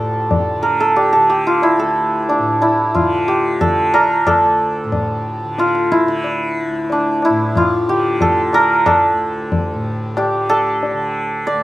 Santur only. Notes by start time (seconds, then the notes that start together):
Already playing: D4 F4 G4 A4
0.63 A#4
0.80 A4
0.96 G4
1.13 A4
1.30 G4
1.47 F4
1.63 E4
1.79 A4
2.29 D4
2.62 E4
2.94 F4
3.28 G4
3.61 A4
3.94 A#4
4.27 A4
5.59 F4
5.92 E4
6.92 D4
7.25 E4
7.57 F4
7.89 G4
8.22 A4
8.54 A#4
8.87 A4
10.17 G4
10.49 A4
11.47 D5